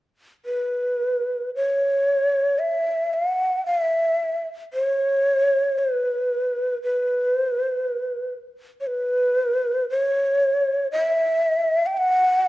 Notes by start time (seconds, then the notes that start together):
0.45 B4
1.55 C#5
2.59 E5
3.14 F#5
3.66 E5
4.74 C#5
5.78 B4
6.82 B4
7.35 C5
7.49 B4
7.65 C5
7.79 B4
8.81 C#5
8.87 B4
9.90 C#5
10.92 E5
11.86 G5
11.98 F#5